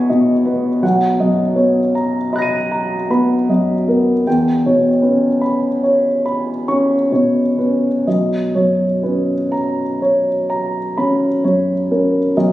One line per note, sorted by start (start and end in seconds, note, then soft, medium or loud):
0.00 0.79 E2 soft
0.00 0.45 B3 soft
0.00 0.85 C#5 soft
0.00 0.09 D#5 soft
0.00 0.85 B5 soft
0.00 0.85 C#6 soft
0.00 0.81 G#6 soft
0.00 0.83 B6 soft
0.00 0.84 D#7 soft
0.09 0.69 B2 soft
0.09 0.68 D#5 soft
0.45 0.83 B3 soft
0.45 0.83 B4 soft
0.83 4.22 B1 soft
0.83 1.42 F#5 soft
1.20 1.79 F#2 soft
1.20 1.79 D#5 soft
1.56 2.17 B3 soft
1.56 1.94 C#5 soft
1.95 2.56 A#5 soft
2.33 2.95 D#5 soft
2.33 3.09 B5 soft
2.33 4.24 F#6 soft
2.38 4.26 A#6 soft
2.38 4.27 D#7 soft
2.71 3.34 A#5 soft
3.10 3.72 B3 soft
3.10 3.49 B5 soft
3.49 4.11 F#2 soft
3.49 4.11 D#5 soft
3.88 4.27 B3 soft
3.88 4.27 A#4 soft
4.27 8.02 E2 soft
4.27 4.88 G5 soft
4.66 5.27 B2 soft
4.66 5.27 C#5 soft
5.02 5.66 C#4 soft
5.02 5.42 B4 soft
5.41 6.07 B5 soft
5.83 6.50 C#5 soft
6.26 6.94 B5 soft
6.68 7.40 C#4 soft
6.68 7.12 C#6 soft
7.12 7.87 B2 soft
7.12 7.87 C#5 soft
7.58 8.06 C#4 soft
7.58 8.06 B4 soft
8.07 12.31 B1 soft
8.07 8.84 D#5 soft
8.55 9.33 F#2 soft
8.55 9.33 C#5 soft
9.03 9.81 C#4 soft
9.03 9.52 B4 soft
9.52 10.29 A#5 soft
10.02 10.78 C#5 soft
10.50 11.26 A#5 soft
10.98 11.73 C#4 soft
10.98 11.44 B5 soft
11.44 12.18 F#2 soft
11.44 12.18 C#5 soft
11.91 12.35 C#4 soft
11.91 12.35 A#4 soft
12.37 12.52 B1 soft
12.37 12.52 D#5 soft